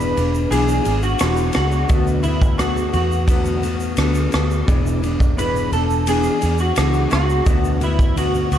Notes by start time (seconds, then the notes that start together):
Already playing: E1 E3 B3 D4 G#4 B4
0.00 shaker
0.16 E1 B3 D4 G#4, ride, shaker
0.35 shaker
0.51 B1 E3 B3 D4 G#4, ride, shaker
0.68 shaker
0.85 G#1 B3 D4 G#4, ride, shaker
1.02 F#4, shaker
1.19 E1 E3 B3 D4 G#4, cross-stick, ride, shaker
1.36 shaker
1.53 C#2 D4 F#4 G#4, cross-stick, ride, shaker
1.57 B3
1.72 shaker
1.89 D2 D3 A3 B3 F#4, kick, ride, shaker
2.07 shaker
2.23 A3 B3 E4 F#4, ride, shaker
2.42 kick, shaker
2.58 D3 A3 B3 F#4, cross-stick, ride, shaker
2.77 shaker
2.93 E2 A3 B3 F#4, ride, shaker
3.12 shaker
3.28 D3 A3 B3 F#4, kick, ride, shaker
3.45 shaker
3.62 A3 B3 F#4, ride, shaker
3.80 shaker
3.97 D2 D3 A3 B3 F#4, cross-stick, ride, shaker
4.14 shaker
4.32 D2 A3 B3 F#4, cross-stick, ride, shaker
4.51 shaker
4.66 E1 E3 B3 D4 G#4, kick, ride, shaker
4.86 shaker
5.02 B3 D4 G#4, ride, shaker
5.20 kick, shaker
5.36 E3 B3 D4 G#4 B4, ride, shaker
5.56 shaker
5.72 E1 B3 D4 A4, ride, shaker
5.90 shaker
6.07 E3 B3 D4 G#4, ride, shaker
6.23 shaker
6.41 E2 B3 D4 G#4, ride, shaker
6.58 F#4, shaker
6.76 C#2 E3 B3 D4 G#4, cross-stick, ride, shaker
6.93 shaker
7.11 C#2 B3 D4 F#4 G#4, cross-stick, ride, shaker
7.29 shaker
7.46 D2 D3 A3 B3 F#4, kick, ride, shaker
7.64 shaker
7.80 A3 B3 E4 F#4, ride, shaker
7.99 kick, shaker
8.15 D3 A3 B3 F#4, ride, shaker
8.35 shaker
8.50 C#2 A3 B3 F#4, ride, shaker